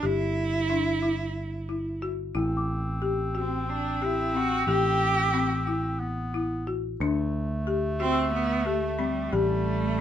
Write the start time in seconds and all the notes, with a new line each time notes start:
0.03 G1 E4 G4
0.70 D4
1.03 E4
1.69 E4
2.02 F#4
2.35 A1 C4 E4
2.57 D6
3.02 G4
3.35 C4 F#4
3.69 D4
4.02 E4 G4
4.35 C4 F#4
4.67 A1 G4
5.34 C4
5.67 E4
6.00 B3
6.34 E4
6.67 F#4
7.00 D2 A3 D4
7.67 G4
8.00 C4 F#4
8.11 E6
8.34 B3
8.66 A3 G4
8.99 G3 C4
9.32 A1 G3 A3 G4